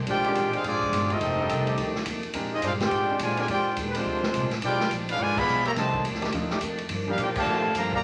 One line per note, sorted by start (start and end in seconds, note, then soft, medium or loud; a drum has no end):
0.06 0.34 A#1 loud
0.06 0.26 A#2 medium
0.06 0.50 G#3 medium
0.06 0.26 G#3 medium
0.06 0.50 D4 medium
0.06 0.27 D4 medium
0.06 0.51 F4 medium
0.06 0.49 G4 medium
0.06 0.27 G4 medium
0.06 0.51 C5 medium
0.06 0.51 D5 medium
0.06 0.51 G5 loud
0.06 kick soft
0.06 ride medium
0.24 0.62 D3 loud
0.24 0.62 G#3 loud
0.24 0.35 G#3 medium
0.24 0.62 C4 medium
0.24 0.35 C4 medium
0.24 0.35 D4 medium
0.24 0.62 G4 loud
0.24 0.35 G4 medium
0.24 0.35 A#4 medium
0.24 ride medium
0.35 0.63 A1 loud
0.35 0.55 A#2 medium
0.35 0.55 G#3 medium
0.35 0.55 D4 medium
0.35 0.55 G4 medium
0.35 kick soft
0.35 hi-hat pedal medium
0.35 ride medium
0.53 0.64 G#3 medium
0.53 0.64 D4 medium
0.53 0.65 D4 medium
0.53 0.64 F4 medium
0.53 0.65 G#4 medium
0.53 0.65 C5 medium
0.53 0.65 F5 medium
0.53 ride medium
0.64 0.92 G#1 loud
0.64 0.83 A#2 medium
0.64 1.08 F3 medium
0.64 0.83 G#3 medium
0.64 1.08 G#3 medium
0.64 1.08 C4 medium
0.64 0.84 D4 medium
0.64 1.08 D4 medium
0.64 1.08 F4 medium
0.64 0.84 G4 medium
0.64 1.08 G#4 medium
0.64 1.08 D5 loud
0.64 kick soft
0.64 ride medium
0.82 kick medium
0.92 1.20 G1 loud
0.92 1.12 A#2 medium
0.92 1.12 G#3 medium
0.92 1.12 D4 medium
0.92 1.12 G4 medium
0.92 kick soft
0.92 hi-hat pedal medium
0.92 ride medium
1.10 1.17 D#3 medium
1.10 1.17 A3 medium
1.10 1.96 A3 medium
1.10 1.96 C4 medium
1.10 1.17 D4 medium
1.10 1.96 D#4 medium
1.10 1.18 F4 loud
1.10 1.96 G4 medium
1.10 1.96 A4 medium
1.10 1.96 D#5 medium
1.10 ride medium
1.21 1.48 F1 medium
1.21 1.40 F2 medium
1.21 1.40 D#3 medium
1.21 1.41 A3 medium
1.21 1.41 D4 medium
1.21 kick soft
1.21 ride medium
1.40 1.49 G3 medium
1.40 1.49 D4 medium
1.40 1.49 D#4 medium
1.40 1.49 F4 medium
1.40 1.49 A4 medium
1.49 1.77 C2 loud
1.49 1.68 F2 medium
1.49 1.68 D#3 medium
1.49 1.69 A3 medium
1.49 1.69 D4 medium
1.49 kick soft
1.49 hi-hat pedal medium
1.49 ride medium
1.65 2.03 D#3 loud
1.65 2.03 A3 medium
1.65 2.03 D4 medium
1.65 2.04 G4 loud
1.65 ride medium
1.77 2.05 D2 medium
1.77 1.97 F2 medium
1.77 1.97 D#3 medium
1.77 1.97 A3 medium
1.77 1.98 D4 medium
1.77 kick soft
1.77 ride medium
1.96 snare soft
2.06 2.22 D#2 loud
2.06 2.25 F2 medium
2.06 2.26 D#3 medium
2.06 2.26 A3 medium
2.06 2.26 D4 medium
2.06 kick soft
2.06 hi-hat pedal medium
2.06 ride medium
2.23 muted upright bass stroke soft
2.23 ride medium
2.34 2.61 F2 medium
2.34 2.54 A#2 medium
2.34 2.50 G#3 medium
2.34 2.54 G#3 medium
2.34 2.51 C4 medium
2.34 2.51 D4 medium
2.34 2.54 D4 medium
2.34 2.51 G4 medium
2.34 2.55 G4 medium
2.34 2.51 A#4 medium
2.34 kick soft
2.34 ride medium
2.53 2.63 C4 medium
2.53 2.63 D#4 medium
2.53 2.63 F4 medium
2.53 2.63 G#4 medium
2.53 2.63 D#5 medium
2.62 2.90 G2 loud
2.62 2.82 A#2 medium
2.62 2.71 G#3 medium
2.62 2.83 G#3 medium
2.62 2.71 D4 medium
2.62 2.72 D4 medium
2.62 2.83 D4 medium
2.62 2.71 F4 medium
2.62 2.72 G#4 medium
2.62 2.72 C5 medium
2.62 2.72 F5 medium
2.62 kick soft
2.62 hi-hat pedal medium
2.62 ride medium
2.66 2.83 G4 medium
2.79 3.17 D3 loud
2.79 3.17 G#3 medium
2.79 3.18 G#3 medium
2.79 3.17 C4 medium
2.79 3.18 D4 medium
2.79 3.18 F4 medium
2.79 3.17 G4 loud
2.79 3.18 G4 medium
2.79 3.18 C5 medium
2.79 3.18 D5 medium
2.79 3.18 G5 loud
2.79 snare medium
2.79 ride medium
2.91 3.19 G#2 medium
2.91 3.11 A#2 medium
2.91 3.11 G#3 medium
2.91 3.11 D4 medium
2.91 3.12 G4 medium
2.91 kick soft
2.91 ride medium
3.09 3.19 G#3 medium
3.09 3.19 C4 medium
3.09 3.19 D4 medium
3.09 3.19 G4 medium
3.09 3.19 C5 medium
3.19 3.47 A#2 loud
3.19 3.39 A#2 medium
3.19 3.37 D3 medium
3.19 3.37 F3 medium
3.19 3.40 G#3 medium
3.19 3.37 G#3 medium
3.19 3.40 D4 medium
3.19 3.39 F4 medium
3.19 3.40 G4 medium
3.19 3.39 C5 medium
3.19 3.39 D5 medium
3.19 3.39 G#5 loud
3.19 kick soft
3.19 hi-hat pedal medium
3.19 ride medium
3.37 3.43 D3 medium
3.37 3.43 F3 medium
3.37 3.47 G#3 medium
3.37 3.43 G#3 medium
3.37 3.48 C4 medium
3.37 3.48 D4 medium
3.37 3.44 F4 medium
3.37 3.48 G4 medium
3.37 3.48 A#4 medium
3.37 3.44 C5 medium
3.37 3.44 D5 medium
3.37 3.44 G#5 loud
3.37 ride medium
3.48 3.65 F2 medium
3.48 3.68 A#2 medium
3.48 3.76 G#3 medium
3.48 3.68 G#3 soft
3.48 3.76 D4 medium
3.48 3.68 D4 medium
3.48 3.76 F4 medium
3.48 3.76 G4 medium
3.48 3.69 G4 medium
3.48 3.76 C5 medium
3.48 3.76 D5 medium
3.48 3.76 G5 loud
3.48 kick soft
3.48 ride medium
3.65 muted upright bass stroke soft
3.76 4.04 D#2 loud
3.76 3.96 A#2 medium
3.76 3.96 G#3 medium
3.76 3.97 D4 medium
3.76 3.97 G4 medium
3.76 kick soft
3.76 hi-hat pedal medium
3.76 ride medium
3.87 3.95 B4 medium
3.94 4.32 D3 loud
3.94 4.52 F3 medium
3.94 4.32 G#3 medium
3.94 4.52 G#3 medium
3.94 4.53 G#3 medium
3.94 4.32 C4 medium
3.94 4.52 C4 medium
3.94 4.53 D4 medium
3.94 4.53 F4 medium
3.94 4.32 G4 loud
3.94 4.53 C5 medium
3.94 ride medium
4.05 4.33 D2 loud
4.05 4.24 A#2 medium
4.05 4.25 G#3 medium
4.05 4.25 D4 medium
4.05 4.25 G4 medium
4.05 kick soft
4.23 snare medium
4.33 4.50 C2 loud
4.33 4.53 A#2 medium
4.33 4.53 G#3 medium
4.33 4.54 D4 medium
4.33 4.54 G4 medium
4.33 kick soft
4.33 hi-hat pedal medium
4.33 ride medium
4.51 muted upright bass stroke soft
4.51 snare soft
4.51 ride medium
4.62 4.90 B1 medium
4.62 4.81 B2 medium
4.62 4.82 F3 medium
4.62 4.90 G#3 medium
4.62 4.82 G#3 medium
4.62 4.90 D4 medium
4.62 4.82 D4 medium
4.62 4.90 F4 medium
4.62 4.90 G4 medium
4.62 4.90 B4 medium
4.62 4.90 D5 medium
4.62 4.90 G5 loud
4.62 kick soft
4.62 ride medium
4.80 snare medium
4.90 5.18 A#1 loud
4.90 5.10 B2 medium
4.90 5.11 F3 medium
4.90 5.11 G#3 medium
4.90 5.11 D4 medium
4.90 kick soft
4.90 hi-hat pedal medium
4.90 ride medium
5.09 5.19 G#3 medium
5.09 5.19 D4 medium
5.09 5.20 D4 medium
5.09 5.19 F4 medium
5.09 5.20 G#4 medium
5.09 5.20 B4 medium
5.09 5.20 F5 loud
5.09 ride medium
5.19 5.46 G#1 medium
5.19 5.38 B2 medium
5.19 5.37 D3 loud
5.19 5.37 F3 medium
5.19 5.39 F3 medium
5.19 5.37 G#3 medium
5.19 5.39 G#3 medium
5.19 5.39 D4 medium
5.19 5.38 F4 loud
5.19 5.38 B4 loud
5.19 5.37 D5 loud
5.19 5.38 G#5 loud
5.19 kick soft
5.37 5.66 F3 medium
5.37 5.66 G#3 medium
5.37 5.66 B3 loud
5.37 5.66 G#4 loud
5.37 5.66 D5 medium
5.37 5.66 F5 medium
5.37 5.66 B5 loud
5.37 kick medium
5.37 crash medium
5.47 5.75 B1 loud
5.47 5.67 B2 medium
5.47 5.67 F3 medium
5.47 5.67 G#3 medium
5.47 5.67 D4 medium
5.47 hi-hat pedal medium
5.65 5.71 A#3 medium
5.65 5.71 G4 loud
5.65 5.71 C#5 medium
5.65 5.71 E5 medium
5.65 5.71 A#5 loud
5.65 ride medium
5.76 6.03 C2 loud
5.76 5.95 F2 medium
5.76 6.03 C3 medium
5.76 5.96 D#3 medium
5.76 6.03 D#3 medium
5.76 5.92 F3 medium
5.76 5.92 A3 medium
5.76 6.03 A3 medium
5.76 5.96 A3 medium
5.76 5.92 D4 medium
5.76 5.96 D4 medium
5.76 5.92 D#4 medium
5.76 6.03 G4 medium
5.76 5.93 G4 medium
5.76 6.03 C5 medium
5.76 6.03 D#5 medium
5.76 6.03 A5 medium
5.76 kick soft
5.76 snare soft
5.76 ride medium
5.94 kick medium
6.04 6.32 D2 loud
6.04 6.24 F2 medium
6.04 6.24 D#3 medium
6.04 6.24 A3 medium
6.04 6.25 D4 medium
6.04 kick soft
6.04 hi-hat pedal medium
6.04 ride medium
6.15 snare soft
6.22 6.29 D#3 loud
6.22 6.29 A3 loud
6.22 6.29 D4 medium
6.22 6.29 G4 loud
6.22 snare medium
6.22 ride medium
6.32 6.60 D#2 medium
6.32 6.52 F2 medium
6.32 6.53 D#3 medium
6.32 6.49 F3 medium
6.32 6.49 A3 medium
6.32 6.53 A3 medium
6.32 6.49 D4 medium
6.32 6.53 D4 medium
6.32 6.49 D#4 medium
6.32 6.49 F4 medium
6.32 kick soft
6.32 ride medium
6.50 6.58 D#3 medium
6.50 6.58 A3 medium
6.50 6.58 D4 medium
6.50 6.58 G4 loud
6.50 snare soft
6.61 6.89 F2 loud
6.61 6.80 F2 medium
6.61 6.81 D#3 medium
6.61 6.81 A3 medium
6.61 6.81 D4 medium
6.61 kick soft
6.61 hi-hat pedal medium
6.61 ride medium
6.78 ride medium
6.89 7.17 G2 medium
6.89 7.09 G2 medium
6.89 7.09 F3 medium
6.89 7.10 A#3 medium
6.89 7.10 D4 medium
6.89 kick soft
6.89 ride medium
7.08 7.17 F3 medium
7.08 7.18 G3 medium
7.08 7.18 A#3 medium
7.08 7.18 D4 medium
7.08 7.19 D4 medium
7.08 7.19 F4 medium
7.08 7.18 G4 loud
7.08 7.19 G4 medium
7.08 7.19 A#4 medium
7.08 7.19 F5 medium
7.18 7.37 G2 medium
7.18 7.46 A#2 loud
7.18 7.38 F3 medium
7.18 7.27 A#3 medium
7.18 7.38 A#3 medium
7.18 7.27 D4 medium
7.18 7.38 D4 medium
7.18 7.28 F4 medium
7.18 7.27 G4 medium
7.18 7.29 A#4 medium
7.18 7.29 D5 medium
7.18 7.29 G5 medium
7.18 kick soft
7.18 hi-hat pedal medium
7.18 ride medium
7.35 7.72 A#2 loud
7.35 7.73 D3 medium
7.35 7.72 F3 loud
7.35 7.73 F3 medium
7.35 7.73 A3 medium
7.35 7.73 D4 medium
7.35 7.72 G4 loud
7.35 7.74 G4 medium
7.35 7.74 D5 medium
7.35 7.74 F5 medium
7.35 7.74 A5 loud
7.35 kick medium
7.35 crash medium
7.46 7.66 G2 medium
7.46 7.74 A2 medium
7.46 7.66 F3 medium
7.46 7.66 A#3 medium
7.46 7.67 D4 medium
7.75 8.02 G2 loud
7.75 7.94 G2 medium
7.75 7.92 D3 medium
7.75 7.92 F3 medium
7.75 7.95 F3 medium
7.75 7.92 A#3 medium
7.75 7.95 A#3 medium
7.75 7.95 D4 medium
7.75 7.93 G4 medium
7.75 7.93 D5 medium
7.75 7.93 F5 medium
7.75 7.93 A#5 loud
7.75 kick soft
7.75 hi-hat pedal medium
7.75 ride medium
7.93 7.99 D3 medium
7.93 7.99 F3 medium
7.93 7.98 A#3 medium
7.93 7.99 G4 medium
7.93 7.99 D5 medium
7.93 7.99 F5 medium
7.93 7.99 A#5 loud
7.93 kick medium